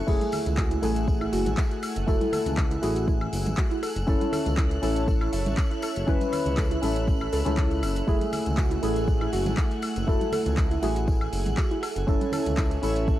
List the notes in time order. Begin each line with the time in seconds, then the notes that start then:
0.07 F#1 A3 E4 G#4 F#5 G#5 E6 F#6, kick, crash, tambourine
0.21 closed hi-hat, tambourine, high conga
0.32 open hi-hat, tambourine, low conga, high woodblock
0.46 C#2, closed hi-hat, tambourine, low conga
0.57 F#4, kick, clap, tambourine
0.71 E4, closed hi-hat, tambourine
0.82 A1 A3 E4 G#4 A4, open hi-hat, tambourine, high conga
0.96 closed hi-hat, tambourine
1.08 kick, tambourine
1.21 E4, tambourine, high woodblock
1.33 F#1 F#4, open hi-hat, tambourine
1.46 A1, closed hi-hat, tambourine, high conga, low conga
1.57 E4, kick, clap, tambourine
1.71 closed hi-hat, tambourine
1.83 open hi-hat, tambourine, high woodblock
1.96 F#1, closed hi-hat, tambourine
2.07 F#1 A3 E4 F#4 A4, kick, tambourine
2.21 E4, closed hi-hat, tambourine, high conga
2.32 A4, open hi-hat, tambourine, low conga, high woodblock
2.46 C#2, closed hi-hat, tambourine, low conga
2.57 kick, clap, tambourine
2.71 E4, closed hi-hat, tambourine
2.82 A1 A3 E4 F#4 G#4, open hi-hat, tambourine, high conga
2.95 closed hi-hat, tambourine
3.08 E4, kick, tambourine
3.21 tambourine, high woodblock
3.33 F#1, open hi-hat, tambourine
3.46 A1, closed hi-hat, tambourine, high conga, low conga
3.57 F#4, kick, clap, tambourine
3.71 E4, closed hi-hat, tambourine
3.83 A4, open hi-hat, tambourine, high woodblock
3.95 F#1, closed hi-hat, tambourine
4.07 F#1 C#4 E4 A4 C#5 E5 A5, kick, tambourine
4.21 E4, closed hi-hat, tambourine, high conga
4.32 A4, open hi-hat, tambourine, low conga, high woodblock
4.46 C#2, closed hi-hat, tambourine, low conga
4.57 E4, kick, clap, tambourine
4.71 closed hi-hat, tambourine
4.82 A1 C#4 E4 A4, open hi-hat, tambourine, high conga
4.96 closed hi-hat, tambourine
5.08 A4, kick, tambourine
5.21 E4, tambourine, high woodblock
5.33 F#1 E5, open hi-hat, tambourine
5.46 A1, closed hi-hat, tambourine, high conga, low conga
5.57 kick, clap, tambourine
5.71 E4, closed hi-hat, tambourine
5.82 A4, open hi-hat, tambourine, high woodblock
5.96 F#1, closed hi-hat, tambourine
6.07 F#1 C#4 E4 B4 B5, kick, tambourine
6.21 closed hi-hat, tambourine, high conga
6.33 open hi-hat, tambourine, low conga, high woodblock
6.46 C#2, closed hi-hat, tambourine, low conga
6.57 A4, kick, clap, tambourine
6.71 E4, closed hi-hat, tambourine
6.82 A1 C#4 E4 A4 E5, open hi-hat, tambourine, high conga
6.96 closed hi-hat, tambourine
7.08 kick, tambourine
7.21 E4, tambourine, high woodblock
7.32 C#2 A4, open hi-hat, tambourine
7.45 C#2 C#4 E4 A4, closed hi-hat, tambourine, high conga, low conga
7.57 E4, kick, clap, tambourine
7.71 closed hi-hat, tambourine
7.83 F#1, open hi-hat, tambourine, high woodblock
7.96 closed hi-hat, tambourine
8.07 F#1 A3 E4 G#4 F#5 G#5, kick, tambourine
8.21 closed hi-hat, tambourine, high conga
8.33 open hi-hat, tambourine, low conga, high woodblock
8.46 C#2, closed hi-hat, tambourine, low conga
8.57 F#4, kick, clap, tambourine
8.71 E4, closed hi-hat, tambourine
8.82 A1 A3 E4 G#4 A4, open hi-hat, tambourine, high conga
8.96 closed hi-hat, tambourine
9.08 kick, tambourine
9.21 E4, tambourine, high woodblock
9.33 F#1 F#4, open hi-hat, tambourine
9.46 A1, closed hi-hat, tambourine, high conga, low conga
9.57 E4, kick, clap, tambourine
9.71 closed hi-hat, tambourine
9.82 open hi-hat, tambourine, high woodblock
9.96 F#1, closed hi-hat, tambourine
10.07 F#1 A3 E4 F#4 A4 G#5, kick, tambourine
10.21 E4, closed hi-hat, tambourine, high conga
10.32 A4, open hi-hat, tambourine, low conga, high woodblock
10.46 C#2, closed hi-hat, tambourine, low conga
10.57 kick, clap, tambourine
10.71 E4, closed hi-hat, tambourine
10.82 A1 A3 E4 F#4 G#4, open hi-hat, tambourine, high conga
10.96 closed hi-hat, tambourine
11.08 E4, kick, tambourine
11.21 tambourine, high woodblock
11.33 F#1, open hi-hat, tambourine
11.46 A1, closed hi-hat, tambourine, high conga, low conga
11.57 F#4, kick, clap, tambourine
11.71 E4, closed hi-hat, tambourine
11.83 A4, open hi-hat, tambourine, high woodblock
11.96 F#1, closed hi-hat
12.07 F#1 C#4 E4 A4 C#5 E5 E6, kick, tambourine
12.21 E4, closed hi-hat, tambourine, high conga
12.32 A4, open hi-hat, tambourine, low conga, high woodblock
12.46 C#2, closed hi-hat, tambourine, low conga
12.57 E4, kick, clap, tambourine
12.71 closed hi-hat, tambourine
12.82 A1 C#4 E4 A4, open hi-hat, tambourine, high conga
12.96 closed hi-hat, tambourine
13.08 A4, kick, tambourine